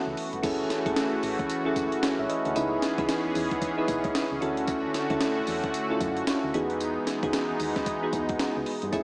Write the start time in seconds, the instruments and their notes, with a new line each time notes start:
Already playing: analog synth pad E3 A3 B3 F#4, synth keys C#4 E4 F#4 A4
0.07 fm bass C#2
0.17 open hi-hat
0.33 fm bass G1, closed hi-hat
0.43 fm bass F#1, analog synth pad E3 A3 C#4 F#4, synth keys C#4 E4 G#4 A4, kick, closed hi-hat, crash, tambourine
0.70 snare, closed hi-hat, tambourine
0.85 fm bass G#1, synth keys C#4 E4 G#4 A4, kick, closed hi-hat
0.96 snare, closed hi-hat, tambourine
1.13 fm bass A1
1.23 fm bass A1, open hi-hat, tambourine
1.39 kick, closed hi-hat
1.49 closed hi-hat, tambourine
1.65 synth keys C#4 E4 G#4 A4
1.76 fm bass F#1, kick, closed hi-hat, tambourine
1.92 closed hi-hat
2.02 fm bass G#1, synth keys A4 C#5, snare, closed hi-hat, tambourine
2.19 fm bass G#1, synth keys C#5 E5
2.29 synth keys B4 D#5, closed hi-hat
2.45 fm bass D2, synth keys A4 C#5, closed hi-hat
2.55 fm bass C#2, analog synth pad E3 B3 G#4, synth keys D#4 E4 G#4 B4, closed hi-hat, tambourine
2.82 snare, closed hi-hat, tambourine
2.98 fm bass C#2, synth keys D#4 E4 G#4 B4, kick, closed hi-hat
3.09 snare, closed hi-hat, tambourine
3.26 fm bass E2
3.35 fm bass E2, open hi-hat, tambourine
3.51 kick, closed hi-hat
3.62 kick, closed hi-hat, tambourine
3.77 synth keys D#4 E4 G#4 B4
3.88 fm bass B1, kick, closed hi-hat, tambourine
4.04 kick, closed hi-hat
4.15 fm bass C#2, snare, closed hi-hat, tambourine
4.32 fm bass C#2
4.41 fm bass D2, analog synth pad D3 A3 F#4, synth keys C#4 E4 F#4 A4, closed hi-hat
4.57 closed hi-hat
4.67 kick, closed hi-hat, tambourine
4.94 snare, closed hi-hat, tambourine
5.10 fm bass D2, synth keys C#4 E4 F#4 A4, kick, closed hi-hat
5.21 snare, closed hi-hat, tambourine
5.38 fm bass E2
5.47 fm bass E2, open hi-hat, tambourine
5.63 kick, closed hi-hat
5.74 closed hi-hat, tambourine
5.90 synth keys C#4 E4 F4 A4
5.97 fm bass F#2, synth keys F#4, kick, closed hi-hat, tambourine
6.17 closed hi-hat
6.27 fm bass D2, snare, closed hi-hat, tambourine
6.44 fm bass D2
6.54 fm bass E2, analog synth pad E3 G#3 B3 D#4, synth keys B3 D#4 F#4 G#4, closed hi-hat
6.70 closed hi-hat
6.80 closed hi-hat, tambourine
7.07 snare, closed hi-hat, tambourine
7.23 fm bass C#2, synth keys B3 D#4 F#4 G#4, kick, closed hi-hat
7.33 snare, closed hi-hat, tambourine
7.50 fm bass D#2
7.60 fm bass D#2, open hi-hat, tambourine
7.76 kick, snare, closed hi-hat
7.86 kick, closed hi-hat, tambourine
8.02 synth keys B3 D#4 F#4 G#4
8.13 fm bass E2, kick, closed hi-hat, tambourine
8.29 kick, closed hi-hat
8.39 fm bass C#2, snare, closed hi-hat, tambourine
8.57 fm bass C#2
8.66 open hi-hat
8.82 fm bass G2, closed hi-hat
8.92 fm bass F#1, analog synth pad C#3 F#3 A3 E4, synth keys A3 C#4 E4 G#4, kick, closed hi-hat, tambourine